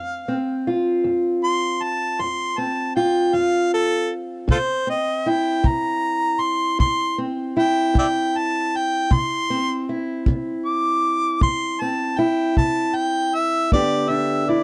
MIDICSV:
0, 0, Header, 1, 4, 480
1, 0, Start_track
1, 0, Key_signature, 0, "major"
1, 0, Tempo, 769231
1, 2805, Time_signature, 12, 3, 24, 8
1, 9132, End_track
2, 0, Start_track
2, 0, Title_t, "Harmonica"
2, 0, Program_c, 0, 22
2, 0, Note_on_c, 0, 77, 97
2, 388, Note_off_c, 0, 77, 0
2, 898, Note_on_c, 0, 84, 98
2, 1142, Note_on_c, 0, 81, 99
2, 1151, Note_off_c, 0, 84, 0
2, 1379, Note_on_c, 0, 84, 85
2, 1388, Note_off_c, 0, 81, 0
2, 1614, Note_on_c, 0, 81, 82
2, 1624, Note_off_c, 0, 84, 0
2, 1843, Note_off_c, 0, 81, 0
2, 1846, Note_on_c, 0, 79, 85
2, 2087, Note_on_c, 0, 77, 85
2, 2096, Note_off_c, 0, 79, 0
2, 2319, Note_off_c, 0, 77, 0
2, 2332, Note_on_c, 0, 69, 102
2, 2562, Note_off_c, 0, 69, 0
2, 2815, Note_on_c, 0, 65, 70
2, 2815, Note_on_c, 0, 69, 70
2, 2815, Note_on_c, 0, 72, 100
2, 2853, Note_off_c, 0, 65, 0
2, 2859, Note_off_c, 0, 69, 0
2, 3043, Note_off_c, 0, 72, 0
2, 3057, Note_on_c, 0, 75, 94
2, 3303, Note_on_c, 0, 79, 88
2, 3312, Note_off_c, 0, 75, 0
2, 3538, Note_on_c, 0, 82, 93
2, 3547, Note_off_c, 0, 79, 0
2, 3996, Note_on_c, 0, 84, 99
2, 4006, Note_off_c, 0, 82, 0
2, 4233, Note_off_c, 0, 84, 0
2, 4241, Note_on_c, 0, 84, 104
2, 4476, Note_off_c, 0, 84, 0
2, 4735, Note_on_c, 0, 79, 99
2, 4963, Note_off_c, 0, 79, 0
2, 4983, Note_on_c, 0, 74, 66
2, 4983, Note_on_c, 0, 76, 66
2, 4983, Note_on_c, 0, 79, 94
2, 5028, Note_off_c, 0, 76, 0
2, 5038, Note_off_c, 0, 74, 0
2, 5224, Note_on_c, 0, 81, 99
2, 5234, Note_off_c, 0, 79, 0
2, 5468, Note_on_c, 0, 79, 91
2, 5478, Note_off_c, 0, 81, 0
2, 5697, Note_on_c, 0, 84, 108
2, 5706, Note_off_c, 0, 79, 0
2, 6157, Note_off_c, 0, 84, 0
2, 6648, Note_on_c, 0, 86, 102
2, 7112, Note_off_c, 0, 86, 0
2, 7130, Note_on_c, 0, 84, 103
2, 7369, Note_on_c, 0, 81, 84
2, 7378, Note_off_c, 0, 84, 0
2, 7608, Note_on_c, 0, 79, 81
2, 7617, Note_off_c, 0, 81, 0
2, 7839, Note_off_c, 0, 79, 0
2, 7846, Note_on_c, 0, 81, 95
2, 8087, Note_on_c, 0, 79, 94
2, 8096, Note_off_c, 0, 81, 0
2, 8328, Note_on_c, 0, 76, 90
2, 8338, Note_off_c, 0, 79, 0
2, 8560, Note_off_c, 0, 76, 0
2, 8568, Note_on_c, 0, 74, 100
2, 8794, Note_on_c, 0, 76, 79
2, 8803, Note_off_c, 0, 74, 0
2, 9046, Note_on_c, 0, 74, 80
2, 9055, Note_off_c, 0, 76, 0
2, 9132, Note_off_c, 0, 74, 0
2, 9132, End_track
3, 0, Start_track
3, 0, Title_t, "Steel-string acoustic guitar"
3, 0, Program_c, 1, 25
3, 0, Note_on_c, 1, 41, 81
3, 0, Note_on_c, 1, 60, 50
3, 174, Note_off_c, 1, 60, 0
3, 176, Note_on_c, 1, 60, 57
3, 359, Note_off_c, 1, 41, 0
3, 419, Note_on_c, 1, 65, 59
3, 650, Note_on_c, 1, 41, 59
3, 1080, Note_off_c, 1, 41, 0
3, 1369, Note_on_c, 1, 41, 75
3, 1607, Note_off_c, 1, 60, 0
3, 1609, Note_on_c, 1, 60, 60
3, 1799, Note_off_c, 1, 41, 0
3, 1843, Note_off_c, 1, 65, 0
3, 1850, Note_on_c, 1, 65, 72
3, 2080, Note_on_c, 1, 41, 72
3, 2514, Note_off_c, 1, 41, 0
3, 2779, Note_off_c, 1, 65, 0
3, 2793, Note_on_c, 1, 48, 77
3, 3036, Note_off_c, 1, 60, 0
3, 3038, Note_on_c, 1, 60, 59
3, 3231, Note_off_c, 1, 48, 0
3, 3284, Note_on_c, 1, 64, 59
3, 3516, Note_on_c, 1, 48, 67
3, 3952, Note_off_c, 1, 48, 0
3, 4236, Note_on_c, 1, 48, 71
3, 4474, Note_off_c, 1, 60, 0
3, 4482, Note_on_c, 1, 60, 62
3, 4673, Note_off_c, 1, 48, 0
3, 4714, Note_off_c, 1, 64, 0
3, 4721, Note_on_c, 1, 64, 68
3, 4954, Note_on_c, 1, 48, 69
3, 5392, Note_off_c, 1, 48, 0
3, 5655, Note_off_c, 1, 60, 0
3, 5682, Note_on_c, 1, 48, 80
3, 5929, Note_on_c, 1, 60, 58
3, 6116, Note_off_c, 1, 48, 0
3, 6163, Note_off_c, 1, 64, 0
3, 6172, Note_on_c, 1, 64, 58
3, 6415, Note_on_c, 1, 48, 68
3, 6842, Note_off_c, 1, 48, 0
3, 7120, Note_on_c, 1, 48, 70
3, 7366, Note_off_c, 1, 60, 0
3, 7373, Note_on_c, 1, 60, 58
3, 7555, Note_off_c, 1, 48, 0
3, 7596, Note_off_c, 1, 64, 0
3, 7604, Note_on_c, 1, 64, 77
3, 7841, Note_on_c, 1, 48, 65
3, 8275, Note_off_c, 1, 48, 0
3, 8540, Note_off_c, 1, 60, 0
3, 8560, Note_on_c, 1, 43, 81
3, 8564, Note_off_c, 1, 64, 0
3, 8564, Note_on_c, 1, 50, 63
3, 8567, Note_on_c, 1, 59, 62
3, 8569, Note_on_c, 1, 62, 68
3, 8577, Note_on_c, 1, 67, 71
3, 8791, Note_off_c, 1, 62, 0
3, 8799, Note_on_c, 1, 62, 57
3, 8995, Note_off_c, 1, 43, 0
3, 9039, Note_off_c, 1, 67, 0
3, 9041, Note_on_c, 1, 64, 62
3, 9132, Note_off_c, 1, 50, 0
3, 9132, Note_off_c, 1, 59, 0
3, 9132, Note_off_c, 1, 62, 0
3, 9132, Note_off_c, 1, 64, 0
3, 9132, End_track
4, 0, Start_track
4, 0, Title_t, "Drums"
4, 2800, Note_on_c, 9, 36, 63
4, 2862, Note_off_c, 9, 36, 0
4, 3521, Note_on_c, 9, 36, 69
4, 3583, Note_off_c, 9, 36, 0
4, 4243, Note_on_c, 9, 36, 65
4, 4305, Note_off_c, 9, 36, 0
4, 4962, Note_on_c, 9, 36, 66
4, 5025, Note_off_c, 9, 36, 0
4, 5684, Note_on_c, 9, 36, 67
4, 5747, Note_off_c, 9, 36, 0
4, 6404, Note_on_c, 9, 36, 71
4, 6466, Note_off_c, 9, 36, 0
4, 7123, Note_on_c, 9, 36, 67
4, 7185, Note_off_c, 9, 36, 0
4, 7843, Note_on_c, 9, 36, 68
4, 7905, Note_off_c, 9, 36, 0
4, 8561, Note_on_c, 9, 36, 65
4, 8623, Note_off_c, 9, 36, 0
4, 9132, End_track
0, 0, End_of_file